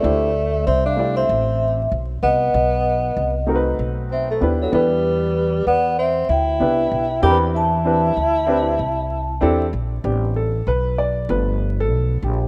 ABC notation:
X:1
M:4/4
L:1/16
Q:"Swing 16ths" 1/4=96
K:Am
V:1 name="Vibraphone"
d4 e f2 e4- e z2 ^d2- | ^d6 z4 e c2 A B2- | B4 d2 e2 g6 b2 | a12 z4 |
z16 |]
V:2 name="Grand piano"
[A,DEGc]2 z4 [A,DEGd]6 z4 | z6 [A,C^D^F_B=B]6 [B,=DEGB]2 [B,DEGB]2- | [B,DEGB]4 z6 [B,DEGB]2 z2 [CDEG_B=B]2- | [CDEG_B=B]2 [CDEGB]2 z2 [CDEGB]2 z4 [CDEGA]2 z2 |
G2 A2 B2 d2 B3 A3 G2 |]
V:3 name="Grand piano"
z16 | z16 | z16 | z16 |
[G,B,CD]2 z6 [F,A,B,]6 z2 |]
V:4 name="Tenor saxophone"
A,4 C D2 C4- C z2 B,2- | B,6 z4 C A,2 ^F, G,2- | G,4 B,2 C2 E6 G2 | E12 z4 |
z16 |]
V:5 name="Upright bass" clef=bass
D,,4 C,,4 A,,,4 B,,,2 C,,2 | B,,,4 C,,4 B,,,4 ^D,,2 E,,2- | E,,4 E,,4 D,,2 C,,2 B,,,2 E,,2- | E,,4 D,,4 C,,4 E,,2 _B,,,2 |
A,,,4 B,,,4 G,,,4 B,,,2 _B,,,2 |]